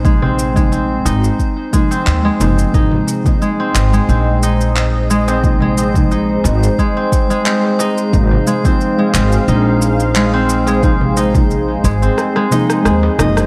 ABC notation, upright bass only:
X:1
M:4/4
L:1/8
Q:"Swing 16ths" 1/4=89
K:Ab
V:1 name="Upright bass" clef=bass
B,,,3 A,,, z2 E,, _G,,, | A,,, z2 A,,, B,,,4- | B,,,3 A,,, z4 | A,,, z2 A,,, B,,,4- |
B,,,3 A,,, z2 E,, _G,,, |]